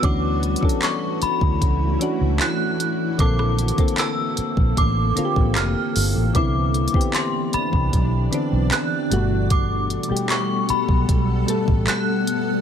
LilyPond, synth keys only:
\new Staff \with { instrumentName = "Synth keys" } { \time 4/4 \key c \lydian \tempo 4 = 76 <e cis' d' fis'>8 r16 <e cis' d' a'>4~ <e cis' d' a'>16 r8 <e cis' d' fis'>4 r8 | <d bes c' a'>8 r16 <d bes c' a'>4~ <d bes c' a'>16 r8 <d bes c' f' g'>4 r8 | <d b c' e'>8 r16 <d b c' g'>4~ <d b c' g'>16 r8 <d b c' d'>4 <bes, b, g a fis'>8~ | <bes, b, g a fis'>8 r16 <b, g a g'>4~ <b, g a g'>16 r8 <b, g a a'>4 r8 | }